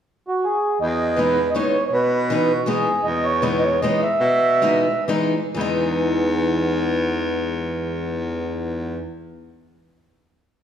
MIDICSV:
0, 0, Header, 1, 4, 480
1, 0, Start_track
1, 0, Key_signature, 4, "major"
1, 0, Tempo, 373599
1, 1038, Time_signature, 3, 2, 24, 8
1, 4403, Tempo, 401338
1, 5843, Tempo, 468019
1, 6803, Tempo, 498753
1, 11677, End_track
2, 0, Start_track
2, 0, Title_t, "Accordion"
2, 0, Program_c, 0, 21
2, 358, Note_on_c, 0, 66, 62
2, 570, Note_on_c, 0, 68, 68
2, 576, Note_off_c, 0, 66, 0
2, 1010, Note_off_c, 0, 68, 0
2, 1040, Note_on_c, 0, 75, 69
2, 1494, Note_on_c, 0, 71, 62
2, 1536, Note_off_c, 0, 75, 0
2, 1917, Note_off_c, 0, 71, 0
2, 1931, Note_on_c, 0, 75, 49
2, 1986, Note_on_c, 0, 73, 74
2, 2010, Note_off_c, 0, 75, 0
2, 2363, Note_off_c, 0, 73, 0
2, 2405, Note_on_c, 0, 73, 56
2, 2482, Note_on_c, 0, 71, 63
2, 2487, Note_off_c, 0, 73, 0
2, 3224, Note_on_c, 0, 66, 58
2, 3241, Note_off_c, 0, 71, 0
2, 3430, Note_off_c, 0, 66, 0
2, 3438, Note_on_c, 0, 68, 76
2, 3898, Note_on_c, 0, 75, 76
2, 3934, Note_off_c, 0, 68, 0
2, 4168, Note_on_c, 0, 73, 93
2, 4174, Note_off_c, 0, 75, 0
2, 4398, Note_on_c, 0, 71, 69
2, 4405, Note_off_c, 0, 73, 0
2, 4588, Note_off_c, 0, 71, 0
2, 4590, Note_on_c, 0, 75, 64
2, 4649, Note_off_c, 0, 75, 0
2, 4656, Note_on_c, 0, 73, 80
2, 4853, Note_off_c, 0, 73, 0
2, 4857, Note_on_c, 0, 75, 80
2, 5095, Note_off_c, 0, 75, 0
2, 5117, Note_on_c, 0, 76, 90
2, 6263, Note_off_c, 0, 76, 0
2, 11677, End_track
3, 0, Start_track
3, 0, Title_t, "Steel-string acoustic guitar"
3, 0, Program_c, 1, 25
3, 1497, Note_on_c, 1, 52, 57
3, 1503, Note_on_c, 1, 56, 46
3, 1513, Note_on_c, 1, 59, 41
3, 1526, Note_on_c, 1, 63, 47
3, 1768, Note_off_c, 1, 52, 0
3, 1768, Note_off_c, 1, 56, 0
3, 1770, Note_off_c, 1, 59, 0
3, 1781, Note_off_c, 1, 63, 0
3, 1986, Note_on_c, 1, 52, 50
3, 1994, Note_on_c, 1, 56, 46
3, 1999, Note_on_c, 1, 63, 56
3, 2001, Note_on_c, 1, 59, 50
3, 2252, Note_off_c, 1, 52, 0
3, 2256, Note_off_c, 1, 63, 0
3, 2257, Note_off_c, 1, 56, 0
3, 2259, Note_off_c, 1, 59, 0
3, 2956, Note_on_c, 1, 52, 53
3, 2958, Note_on_c, 1, 56, 36
3, 2964, Note_on_c, 1, 59, 52
3, 2977, Note_on_c, 1, 63, 56
3, 3215, Note_off_c, 1, 56, 0
3, 3217, Note_off_c, 1, 52, 0
3, 3220, Note_off_c, 1, 59, 0
3, 3226, Note_off_c, 1, 63, 0
3, 3419, Note_on_c, 1, 52, 55
3, 3433, Note_on_c, 1, 56, 54
3, 3441, Note_on_c, 1, 59, 51
3, 3443, Note_on_c, 1, 63, 55
3, 3686, Note_off_c, 1, 52, 0
3, 3694, Note_off_c, 1, 56, 0
3, 3697, Note_off_c, 1, 63, 0
3, 3698, Note_off_c, 1, 59, 0
3, 4394, Note_on_c, 1, 52, 53
3, 4404, Note_on_c, 1, 56, 58
3, 4412, Note_on_c, 1, 63, 43
3, 4414, Note_on_c, 1, 59, 47
3, 4642, Note_off_c, 1, 52, 0
3, 4648, Note_off_c, 1, 56, 0
3, 4649, Note_off_c, 1, 63, 0
3, 4652, Note_off_c, 1, 59, 0
3, 4877, Note_on_c, 1, 52, 54
3, 4889, Note_on_c, 1, 56, 60
3, 4892, Note_on_c, 1, 59, 41
3, 4899, Note_on_c, 1, 63, 55
3, 5123, Note_off_c, 1, 52, 0
3, 5128, Note_off_c, 1, 59, 0
3, 5129, Note_off_c, 1, 56, 0
3, 5134, Note_off_c, 1, 63, 0
3, 5827, Note_on_c, 1, 56, 60
3, 5833, Note_on_c, 1, 52, 53
3, 5843, Note_on_c, 1, 63, 61
3, 5851, Note_on_c, 1, 59, 54
3, 6077, Note_off_c, 1, 56, 0
3, 6080, Note_off_c, 1, 52, 0
3, 6085, Note_off_c, 1, 63, 0
3, 6086, Note_off_c, 1, 59, 0
3, 6301, Note_on_c, 1, 52, 66
3, 6310, Note_on_c, 1, 56, 58
3, 6312, Note_on_c, 1, 59, 44
3, 6314, Note_on_c, 1, 63, 71
3, 6566, Note_off_c, 1, 52, 0
3, 6566, Note_off_c, 1, 59, 0
3, 6567, Note_off_c, 1, 56, 0
3, 6571, Note_off_c, 1, 63, 0
3, 6780, Note_on_c, 1, 52, 61
3, 6800, Note_on_c, 1, 56, 52
3, 6829, Note_on_c, 1, 59, 44
3, 6842, Note_on_c, 1, 63, 74
3, 10097, Note_off_c, 1, 52, 0
3, 10115, Note_off_c, 1, 56, 0
3, 10143, Note_off_c, 1, 59, 0
3, 10157, Note_off_c, 1, 63, 0
3, 11677, End_track
4, 0, Start_track
4, 0, Title_t, "Baritone saxophone"
4, 0, Program_c, 2, 67
4, 1050, Note_on_c, 2, 40, 69
4, 1986, Note_off_c, 2, 40, 0
4, 2473, Note_on_c, 2, 47, 70
4, 3411, Note_off_c, 2, 47, 0
4, 3919, Note_on_c, 2, 40, 69
4, 4854, Note_off_c, 2, 40, 0
4, 5331, Note_on_c, 2, 47, 80
4, 6078, Note_off_c, 2, 47, 0
4, 6805, Note_on_c, 2, 40, 76
4, 10120, Note_off_c, 2, 40, 0
4, 11677, End_track
0, 0, End_of_file